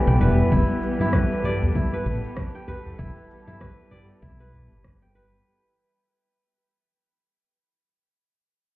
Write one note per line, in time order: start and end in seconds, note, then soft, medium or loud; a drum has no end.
0.00 0.17 E3 medium
0.00 5.46 E3 medium
0.00 5.46 G3 medium
0.00 0.17 A3 medium
0.00 5.46 B3 medium
0.00 0.17 D4 medium
0.00 0.51 E4 medium
0.00 0.17 G4 medium
0.00 5.47 G4 medium
0.00 0.18 B4 medium
0.00 0.20 B4 medium
0.00 1.14 B4 medium
0.07 0.16 B1 medium
0.07 1.01 G5 medium
0.07 shaker soft
0.20 0.42 E1 loud
0.20 0.48 E3 medium
0.20 0.48 A3 medium
0.20 0.48 D4 medium
0.20 0.49 G4 medium
0.20 1.13 B4 medium
0.20 0.49 B4 medium
0.20 shaker medium
0.39 shaker soft
0.52 0.63 E1 medium
0.52 1.00 E4 medium
0.52 kick loud
0.52 shaker soft
0.70 shaker soft
0.83 shaker medium
0.98 1.75 E4 medium
0.98 5.47 A4 medium
0.98 mid tom medium
0.98 shaker soft
1.13 1.93 B4 medium
1.13 kick loud
1.13 cross-stick medium
1.13 shaker soft
1.32 shaker soft
1.44 2.55 D5 medium
1.44 mid tom medium
1.44 shaker medium
1.62 udu medium
1.62 shaker soft
1.75 2.98 E4 medium
1.75 kick loud
1.75 shaker soft
1.93 2.67 B4 medium
1.93 mid tom medium
1.93 shaker soft
2.06 2.17 A1 medium
2.06 shaker medium
2.24 shaker soft
2.37 kick loud
2.37 cross-stick loud
2.37 shaker soft
2.55 3.48 G5 medium
2.55 shaker soft
2.68 3.60 B4 medium
2.68 udu loud
2.68 shaker medium
2.86 udu medium
2.86 shaker soft
2.99 3.10 E1 medium
2.99 3.47 E4 medium
2.99 kick medium
2.99 shaker soft
3.17 shaker soft
3.31 shaker medium
3.48 4.22 E4 medium
3.48 mid tom medium
3.48 shaker soft
3.60 4.40 B4 medium
3.60 kick loud
3.60 cross-stick medium
3.80 shaker soft
3.91 5.02 D5 medium
3.91 mid tom medium
3.91 shaker medium
4.11 shaker soft
4.22 4.71 B1 medium
4.22 5.79 E4 medium
4.22 kick loud
4.40 5.15 B4 medium
4.53 udu medium
4.53 shaker medium
4.71 5.38 G1 medium
4.71 shaker soft
4.84 kick medium
4.84 cross-stick medium
5.02 5.95 G5 medium
5.15 6.38 B4 medium
5.15 shaker medium